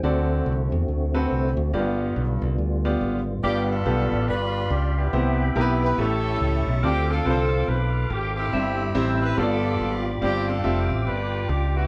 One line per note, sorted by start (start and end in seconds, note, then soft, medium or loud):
0.03 0.40 D2 medium
0.03 3.40 D3 medium
0.03 0.68 D3 medium
0.03 1.72 A3 medium
0.03 1.72 C4 medium
0.03 0.51 C4 medium
0.03 1.72 F#4 medium
0.03 0.51 F#4 medium
0.03 0.51 A4 medium
0.03 0.51 D5 medium
0.46 0.68 C2 medium
0.72 0.86 E2 medium
0.88 1.25 D2 medium
1.14 1.48 C4 medium
1.14 1.48 F#4 medium
1.14 1.48 A4 medium
1.14 1.48 B4 medium
1.31 1.53 C2 medium
1.57 1.71 D2 loud
1.73 2.10 G1 medium
1.73 2.38 G2 medium
1.73 3.42 G3 medium
1.73 1.80 A#3 medium
1.73 3.42 B3 medium
1.73 2.21 F4 medium
1.73 3.42 F4 medium
1.73 2.21 G4 medium
1.73 2.21 D5 medium
1.79 2.24 B3 medium
2.16 2.38 B1 medium
2.42 2.56 C2 medium
2.58 2.95 D2 medium
2.85 3.18 B3 medium
2.85 3.18 F4 medium
2.85 3.18 G4 medium
2.85 3.18 D5 medium
3.01 3.37 G#1 medium
3.43 3.80 G1 medium
3.43 4.08 G2 medium
3.43 3.71 B3 medium
3.43 4.25 B3 medium
3.43 3.69 D4 medium
3.43 3.71 F4 medium
3.43 3.68 G4 medium
3.43 3.71 G4 medium
3.43 6.80 G4 medium
3.43 3.71 D5 medium
3.43 5.12 D5 medium
3.43 5.12 F5 medium
3.43 5.96 B5 medium
3.70 4.28 D4 medium
3.70 4.28 F4 medium
3.70 4.29 A4 medium
3.86 4.08 B1 medium
3.86 4.33 B3 medium
3.86 4.33 F4 medium
3.86 4.33 G4 medium
3.86 4.33 A4 medium
4.11 4.26 A1 medium
4.28 4.64 G1 medium
4.28 5.10 D4 medium
4.28 5.10 F4 medium
4.28 4.71 B4 loud
4.70 5.07 C#2 medium
4.70 4.97 G4 medium
4.98 5.78 B3 medium
4.98 5.78 E4 medium
4.98 5.78 G4 medium
5.13 5.49 C2 medium
5.13 5.78 C3 medium
5.13 5.41 B3 medium
5.13 5.41 E4 medium
5.13 5.41 G4 medium
5.13 5.41 C5 medium
5.13 6.82 E5 medium
5.13 5.98 G5 medium
5.55 5.92 B1 medium
5.55 5.98 B3 medium
5.55 5.97 E4 medium
5.55 5.97 G4 medium
5.55 5.62 A#4 medium
5.61 5.97 B4 loud
5.83 5.99 B4 medium
5.98 6.34 A1 medium
5.98 6.63 A2 medium
5.98 6.70 A3 medium
5.98 6.80 C#4 medium
5.98 6.70 E4 medium
5.98 6.80 E4 medium
5.98 6.70 G4 medium
5.98 6.67 A4 loud
5.98 6.05 B4 medium
5.98 6.82 A5 medium
5.98 6.82 C#6 medium
6.04 6.73 C#5 medium
6.40 6.63 C#2 medium
6.66 6.80 B1 medium
6.83 7.19 D2 medium
6.83 7.47 D3 medium
6.83 7.11 C4 medium
6.83 7.09 C4 medium
6.83 7.11 F4 medium
6.83 7.08 G4 loud
6.83 8.51 A4 medium
6.83 7.11 A4 medium
6.83 7.11 D5 medium
6.83 8.51 F5 medium
6.83 8.51 D6 medium
7.10 7.90 C4 medium
7.10 7.68 F4 medium
7.10 7.69 A4 loud
7.25 7.62 C2 medium
7.25 7.73 C4 medium
7.25 7.73 F4 medium
7.25 7.73 A4 medium
7.25 7.32 B4 medium
7.30 7.75 C5 medium
7.68 8.04 B1 medium
7.68 8.49 F4 medium
7.68 8.11 B4 loud
8.10 8.46 G#1 medium
8.10 8.36 G4 medium
8.36 9.17 C4 medium
8.36 9.17 E4 medium
8.36 9.17 G4 loud
8.53 8.89 G1 loud
8.53 9.17 G2 medium
8.53 8.80 C4 medium
8.53 8.80 E4 medium
8.53 8.80 G4 medium
8.53 10.21 G4 medium
8.53 8.80 E5 medium
8.53 9.37 E5 medium
8.53 9.37 E6 medium
8.95 9.31 A1 medium
8.95 9.37 C4 medium
8.95 9.37 E4 medium
8.95 9.36 G4 medium
8.95 9.37 C5 medium
9.22 9.37 B4 medium
9.37 9.74 G1 medium
9.37 10.02 G2 medium
9.37 10.09 B3 medium
9.37 10.18 D4 medium
9.37 10.09 F4 medium
9.37 10.18 F4 medium
9.37 11.87 F4 medium
9.37 10.09 G4 medium
9.37 10.02 A4 medium
9.37 9.44 C#5 medium
9.37 10.21 B5 medium
9.37 11.87 D6 medium
9.43 10.12 D5 medium
9.80 10.16 G#1 medium
10.21 10.58 G1 medium
10.21 10.86 G2 medium
10.21 10.49 C4 medium
10.21 10.47 C4 medium
10.21 10.90 D4 medium
10.21 10.49 F4 medium
10.21 10.49 G4 medium
10.21 11.87 G4 medium
10.21 10.47 G4 medium
10.21 10.50 D5 medium
10.21 11.87 G5 medium
10.48 11.29 C4 medium
10.48 10.90 F4 medium
10.48 10.90 A4 medium
10.64 10.87 F1 medium
10.64 11.12 C4 medium
10.64 11.12 F4 medium
10.64 11.12 G4 medium
10.64 11.12 E5 medium
10.90 11.04 A1 medium
11.07 11.43 G1 medium
11.07 11.87 D4 medium
11.07 11.87 F4 medium
11.07 11.50 B4 medium
11.49 11.85 C#2 medium
11.49 11.76 G4 medium
11.76 11.87 B3 medium
11.76 11.87 E4 medium
11.76 11.87 G4 loud